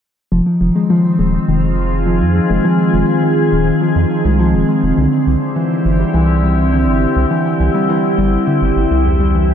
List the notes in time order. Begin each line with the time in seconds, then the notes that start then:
0.32 F1 D#3 F3
0.46 F3
0.61 F1 F3 C4
0.76 G#3
0.90 F3
1.05 F3
1.19 D#1 G#3
1.34 F4
1.48 F1 D#3
1.59 G#4
2.07 F3
2.21 F2 F3
2.36 F3
2.50 F1 G#3
2.65 F3
2.79 F3
2.94 F1 G#3
3.23 D#3
3.52 D#1
3.81 F3
3.96 F2 F3
4.11 F3
4.25 C2 G#3
4.39 F3
4.54 D#1 F3
4.69 G#3
4.83 F1
4.98 C2 D3
5.27 C2 E4
5.42 G4
5.56 E3
5.70 E3
5.85 G1 E3
6.00 G3
6.14 C2 E3
6.29 E3
6.43 G3
6.72 D3
6.87 G1
7.16 C2
7.31 E3
7.45 E3
7.60 C2 E3
7.74 G3
7.89 E3
8.04 E3
8.18 G1 G3
8.47 D3
8.62 G1
8.76 G1
8.91 C2
9.06 E2
9.20 G3
9.35 E3
9.49 E3